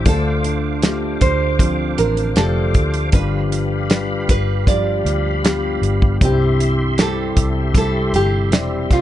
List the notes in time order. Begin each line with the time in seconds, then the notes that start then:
Already playing: D4 E4 G4 C5 D6
0.06 D2 D3 A3 D4 F4 A4 C5 F5, kick, closed hi-hat
0.44 D4, closed hi-hat
0.82 A3 D4 F4 G4, snare, closed hi-hat
1.21 D2 C5, kick, closed hi-hat
1.59 F3 C4 D4 F4 C5, kick, closed hi-hat
1.98 A1 D4 A#4, closed hi-hat
2.17 closed hi-hat
2.36 F1 A3 C4 D4 F4 G4 A4, snare, closed hi-hat
2.74 D2, kick, closed hi-hat
2.94 closed hi-hat
3.12 G1 G2 D3 G3 D4 F4 G4 B4 B5, kick, closed hi-hat
3.52 F4, closed hi-hat
3.90 G3 D4 F4 G4 B4, snare, closed hi-hat
4.29 G1 B4, kick, closed hi-hat
4.67 F3 G3 D4 F4 G4 D5, kick, closed hi-hat
5.05 D2 F4, closed hi-hat
5.44 G3 B3 D4 F4 G4, snare, closed hi-hat
5.82 G1, closed hi-hat
6.02 kick
6.21 C2 G2 C3 G3 C4 D4 G4 C5 E5 C6, kick, closed hi-hat
6.29 E4
6.60 E4, closed hi-hat
6.98 G3 C4 E4 G4 A4, snare, closed hi-hat
7.37 C2, kick, closed hi-hat
7.74 G3 C4 E4 A4, kick, closed hi-hat
8.13 G1 E4 G4, closed hi-hat
8.51 E1 G3 C4 G4 D5 E5, snare, closed hi-hat
8.91 C2 F4, kick, snare, closed hi-hat